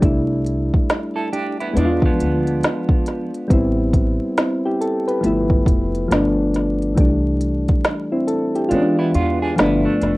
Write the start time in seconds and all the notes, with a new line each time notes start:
0.00 C2 G3 A3 D4, kick, closed hi-hat
0.05 E4
0.46 closed hi-hat
0.74 kick
0.90 snare, closed hi-hat
1.16 E4 A4
1.33 D4 G4, closed hi-hat
1.60 B3 E4, closed hi-hat
1.73 E2 G#3 B3 D4, closed hi-hat
1.78 G#3 E4
1.85 F4
2.02 F3 B3, kick
2.20 D2, closed hi-hat
2.47 closed hi-hat
2.63 snare, closed hi-hat
2.89 kick
3.06 snare, closed hi-hat
3.34 closed hi-hat
3.48 A1 G3 B3 C4, kick, closed hi-hat
3.53 E4
3.93 kick, closed hi-hat
4.37 C4 E4, snare, closed hi-hat
4.65 E4 G4
4.81 A4, closed hi-hat
5.08 G4 B4, closed hi-hat
5.21 G1 F3 A3 B3, closed hi-hat
5.26 E4
5.50 kick
5.66 F1, kick, closed hi-hat
5.95 closed hi-hat
6.08 G1 F3 A3, closed hi-hat
6.12 B3 D4, snare
6.54 snare, closed hi-hat
6.82 closed hi-hat
6.95 C2 E3 G3 A3, kick, closed hi-hat
7.00 D4
7.41 closed hi-hat
7.68 kick, closed hi-hat
7.84 snare, closed hi-hat
8.12 C4 E4
8.27 A4, closed hi-hat
8.55 E4 G4, closed hi-hat
8.69 E3 G#3 B3 D4 F4, closed hi-hat
8.74 C#4
8.81 D4
8.99 B3 E4
9.14 E2 B3 F4, closed hi-hat
9.42 D4 G#4
9.56 G1 F3 A3 B3 E4, snare, closed hi-hat
9.61 D4
9.85 A3 D4
10.01 F1, snare, closed hi-hat